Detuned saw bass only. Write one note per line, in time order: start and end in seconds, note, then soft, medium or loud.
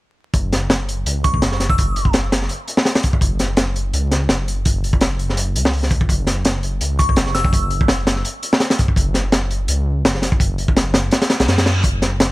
0.34 1.05 F#1 loud
1.06 1.41 C#2 loud
1.42 1.77 F#1 loud
1.79 2.49 F#1 loud
3.21 3.92 F#1 loud
3.93 4.28 C#2 loud
4.29 4.64 F#1 loud
4.66 5.57 F#1 loud
5.55 6.08 C#2 medium
6.09 6.80 F#1 loud
6.81 7.16 C#2 loud
7.17 7.52 F#1 loud
7.53 8.23 F#1 loud
8.96 9.67 F#1 loud
9.68 10.03 C#2 loud
10.04 10.39 F#1 loud
10.40 11.11 F#1 loud
11.40 11.47 B1 medium
11.48 11.83 F#2 loud
11.84 12.32 F#1 loud